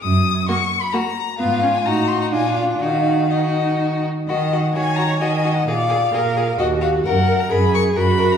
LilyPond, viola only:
\new Staff \with { instrumentName = "Viola" } { \time 3/4 \key ees \minor \tempo 4 = 130 r4 bes4 bes4 | ces'8 des'8 ees'4 d'4 | ees'4 ees'4. r8 | r4 des''4 ees''4 |
d''4 bes'4 ges'4 | bes'4 aes'4 ges'4 | }